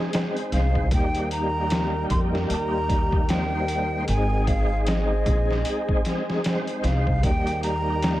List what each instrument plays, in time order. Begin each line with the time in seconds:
Already playing: tonewheel organ D#4 G#4, ambient pad D#4 G#4 C5 G#5
0.11 tonewheel organ G#3 C4 D#4, snare, closed hi-hat
0.16 tonewheel organ C5
0.37 closed hi-hat
0.52 upright bass C2, flute F5, snare, closed hi-hat
0.75 kick
0.87 tonewheel organ G3 A#3
0.91 upright bass D#2, tonewheel organ D#4, ambient pad G4 A#4 G5, flute G5, kick, closed hi-hat
0.97 tonewheel organ G4
1.15 closed hi-hat
1.31 flute A#5, closed hi-hat
1.70 snare, closed hi-hat
2.10 upright bass F2, flute C6, kick, closed hi-hat
2.35 snare
2.50 upright bass D#2, flute A#5, closed hi-hat
2.89 kick, closed hi-hat
3.12 kick
3.27 tonewheel organ G3 A#3 D#4, flute G5, snare, closed hi-hat
3.32 tonewheel organ C5
3.68 closed hi-hat
4.05 upright bass G#1, tonewheel organ G#3 C4, ambient pad G#4 C5 G#5, flute G#5, closed hi-hat
4.11 tonewheel organ D#4 G#4
4.47 flute F5, kick, closed hi-hat
4.87 flute D#5, snare, closed hi-hat
5.26 upright bass A#1, kick, closed hi-hat
5.51 snare
5.65 closed hi-hat
5.89 kick
6.05 snare, closed hi-hat
6.30 snare
6.43 tonewheel organ G#3 C4 D#4, snare, closed hi-hat
6.49 tonewheel organ C5
6.67 closed hi-hat
6.83 upright bass C2, flute F5, snare, closed hi-hat
7.07 kick
7.19 tonewheel organ G3 A#3
7.23 upright bass D#2, ambient pad D#4 G4 A#4 G5, tonewheel organ D#4, flute G5, kick, closed hi-hat
7.29 tonewheel organ G4
7.47 closed hi-hat
7.63 flute A#5, closed hi-hat
8.02 snare, closed hi-hat